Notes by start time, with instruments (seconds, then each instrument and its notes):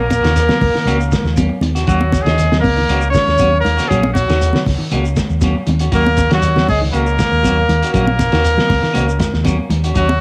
Already playing: fingered electric bass A#1, alto saxophone A#3, trumpet A#4
0.10 muted clean electric guitar stroke, kick, closed hi-hat, high conga, shekere
0.23 fingered electric bass D#2, clean electric guitar D#3 C#4 F#4, snare, closed hi-hat, shekere
0.36 muted clean electric guitar stroke, snare, closed hi-hat, high conga, shekere
0.49 clean electric guitar F#3, snare, high conga
0.61 fingered electric bass C#2, kick, open hi-hat, low conga, shekere
0.74 clean electric guitar D#3, muted fingered electric bass stroke, muted clean electric guitar stroke, snare
0.85 fingered electric bass C#2, clean electric guitar A#3 C#4 F#4, closed hi-hat, high conga, low conga, shekere
0.99 muted clean electric guitar stroke, shekere
1.11 clean electric guitar G#3, muted clean electric guitar stroke, kick, snare, closed hi-hat, shekere
1.24 fingered electric bass D#2, snare, shekere
1.36 clean electric guitar F#3 A#3 C#4, kick, closed hi-hat, high conga, shekere
1.49 muted clean electric guitar stroke
1.61 fingered electric bass D#2, clean electric guitar D#3, muted clean electric guitar stroke, closed hi-hat, high conga, low conga, shekere
1.75 clean electric guitar F#4, snare, closed hi-hat, shekere
1.87 fingered electric bass D#2, alto saxophone F#3, clean electric guitar F#3 A#3 C#4 F#4, trumpet F#4, kick, closed hi-hat, high conga, shekere
2.01 muted clean electric guitar stroke, high conga
2.12 muted clean electric guitar stroke, kick, snare, closed hi-hat, high conga, shekere
2.22 fingered electric bass D#2, clean electric guitar F#4, trumpet G#4
2.26 clean electric guitar D#3 C#4, alto saxophone G#3, snare, closed hi-hat, shekere
2.38 muted clean electric guitar stroke, snare, closed hi-hat, high conga, shekere
2.52 clean electric guitar F#3, snare, high conga
2.60 fingered electric bass C#2, alto saxophone A#3, trumpet A#4, kick, open hi-hat
2.64 high conga, low conga, shekere
2.77 clean electric guitar D#3, muted clean electric guitar stroke
2.89 fingered electric bass C#2, clean electric guitar A#3 C#4 F#4, closed hi-hat, high conga, low conga, shekere
3.01 muted clean electric guitar stroke, shekere
3.10 alto saxophone C#4, trumpet C#5, shekere
3.14 clean electric guitar G#3, muted clean electric guitar stroke, kick, snare, closed hi-hat
3.27 fingered electric bass D#2, snare, shekere
3.38 clean electric guitar F#3 A#3 C#4 F#4, kick, closed hi-hat, high conga, shekere
3.52 muted clean electric guitar stroke
3.60 alto saxophone A#3, trumpet A#4, muted clean electric guitar stroke
3.65 fingered electric bass D#2, clean electric guitar D#3, closed hi-hat, low conga, shekere
3.77 clean electric guitar C#4 F#4, snare, closed hi-hat, shekere
3.88 fingered electric bass A#1, clean electric guitar F#3 A#3 C#4 F#4, alto saxophone C#4, trumpet G#4, kick, closed hi-hat, high conga, shekere
4.03 muted clean electric guitar stroke, high conga
4.13 alto saxophone F#3, trumpet F#4, muted clean electric guitar stroke, kick, closed hi-hat, high conga, shekere
4.28 fingered electric bass D#2, clean electric guitar D#3 C#4 F#4, snare, closed hi-hat, shekere
4.40 muted clean electric guitar stroke, closed hi-hat, high conga, shekere
4.53 clean electric guitar F#3, snare, high conga
4.66 fingered electric bass C#2, kick, snare, open hi-hat, low conga, shekere
4.78 clean electric guitar D#3, muted fingered electric bass stroke, muted clean electric guitar stroke
4.91 fingered electric bass C#2, clean electric guitar A#3 C#4 F#4, closed hi-hat, high conga, low conga, shekere
5.05 muted clean electric guitar stroke, shekere
5.16 clean electric guitar G#3, muted clean electric guitar stroke, kick, snare, closed hi-hat, shekere
5.30 fingered electric bass D#2, shekere
5.41 clean electric guitar F#3 A#3 C#4 F#4, kick, snare, closed hi-hat, high conga, shekere
5.56 muted clean electric guitar stroke
5.67 fingered electric bass D#2, clean electric guitar D#3, muted clean electric guitar stroke, closed hi-hat, high conga, low conga, shekere
5.79 clean electric guitar C#4 F#4, closed hi-hat, shekere
5.92 fingered electric bass D#2, clean electric guitar F#3 A#3 C#4 F#4, alto saxophone A#3, trumpet A#4, kick, closed hi-hat, high conga, shekere
6.05 muted clean electric guitar stroke, high conga
6.17 muted clean electric guitar stroke, kick, snare, closed hi-hat, high conga, shekere
6.30 fingered electric bass D#2, clean electric guitar F#3 C#4 F#4, alto saxophone F#3, trumpet F#4, snare, closed hi-hat, shekere
6.42 muted clean electric guitar stroke, closed hi-hat, high conga, shekere
6.56 clean electric guitar F#3, snare, high conga
6.68 fingered electric bass C#2, alto saxophone G#3, trumpet G#4, kick, open hi-hat, low conga, shekere
6.81 clean electric guitar D#3, muted clean electric guitar stroke
6.92 fingered electric bass C#2, clean electric guitar A#3 C#4 F#4, alto saxophone A#3, trumpet A#4, closed hi-hat, high conga, shekere
7.07 muted clean electric guitar stroke, shekere
7.19 clean electric guitar G#3, muted clean electric guitar stroke, kick, snare, closed hi-hat, shekere
7.32 fingered electric bass D#2, shekere
7.43 clean electric guitar F#3 A#3 C#4 F#4, kick, snare, closed hi-hat, high conga, shekere
7.59 muted clean electric guitar stroke
7.68 fingered electric bass D#2, clean electric guitar D#3, muted clean electric guitar stroke, closed hi-hat, low conga, shekere
7.82 clean electric guitar C#4 F#4, closed hi-hat, shekere
7.93 fingered electric bass A#1, clean electric guitar F#3 A#3 C#4 F#4, alto saxophone A#3, trumpet A#4, kick, closed hi-hat, high conga, shekere
8.07 muted clean electric guitar stroke, high conga
8.19 muted clean electric guitar stroke, kick, snare, closed hi-hat, high conga, shekere
8.32 fingered electric bass D#2, clean electric guitar D#3 C#4 F#4, snare, closed hi-hat, shekere
8.44 muted clean electric guitar stroke, closed hi-hat, high conga, shekere
8.57 clean electric guitar F#3, snare, high conga
8.69 fingered electric bass C#2, kick, snare, open hi-hat, high conga, low conga, shekere
8.82 clean electric guitar D#3, muted clean electric guitar stroke, muted fingered electric bass stroke, snare
8.93 fingered electric bass C#2, clean electric guitar A#3 C#4 F#4, closed hi-hat, high conga, low conga, shekere
9.08 muted clean electric guitar stroke, shekere
9.19 clean electric guitar G#3, muted clean electric guitar stroke, kick, snare, closed hi-hat, shekere
9.33 fingered electric bass D#2, snare, shekere
9.44 clean electric guitar F#3 A#3 C#4 F#4, kick, snare, closed hi-hat, high conga, shekere
9.58 muted clean electric guitar stroke
9.69 fingered electric bass D#2, clean electric guitar D#3, muted clean electric guitar stroke, closed hi-hat, low conga, shekere
9.84 clean electric guitar C#4 F#4, closed hi-hat, shekere
9.94 fingered electric bass D#2, clean electric guitar F#3 C#4 F#4, alto saxophone F#3, trumpet F#4, muted clean electric guitar stroke, kick, closed hi-hat, high conga, shekere
10.09 high conga